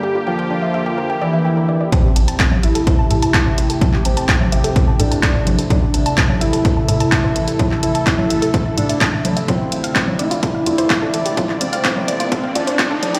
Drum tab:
HH |----------------|x-xxx-xxx-xxx-xx|x-xxx-xxx-xxx-xx|x-xxx-xxx-xxx-xx|
CP |----------------|----x-------x---|-x--x-------x---|----x-------x---|
CG |----------------|O----O----------|O----O--------O-|O----O----------|
BD |----------------|o---o---o---o---|o---o---o---o---|o---o---o---o---|

HH |x-xxx-xxx-xxx-xx|x-xxx-xxx-xxx-xx|x-xxx-xxx-xxx-xx|
CP |-x--x-------x---|----x-------x---|-x--x-------x---|
CG |O----O--------O-|O----O----------|O----O--------O-|
BD |o---o---o---o---|o---o---o---o---|o---o---o---o---|